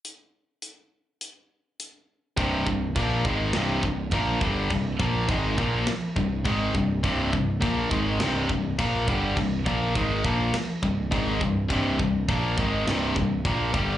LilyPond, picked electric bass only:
\new Staff \with { instrumentName = "Picked electric bass" } { \clef bass \time 4/4 \key c \minor \tempo 4 = 103 r1 | c,,8 c,,8 bes,,8 aes,,8 c,,8 c,,8 bes,,8 g,,8 | c,,8 bes,,8 aes,,8 bes,,8 r8 c,,8 aes,,8 c,,8 | c,,8 c,,8 bes,,8 aes,,8 c,,8 c,,8 bes,,8 g,,8 |
c,,8 bes,,8 aes,,8 bes,,8 r8 c,,8 aes,,8 c,,8 | c,,8 c,,8 bes,,8 aes,,8 c,,8 c,,8 bes,,8 g,,8 | }